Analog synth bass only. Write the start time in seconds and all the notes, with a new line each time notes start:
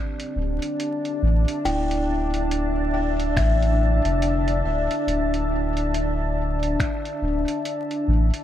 0.36 D1
1.23 A1
1.65 D1
3.37 A1
4.05 F1
4.65 D1
5.07 D1
7.22 D1
8.08 A1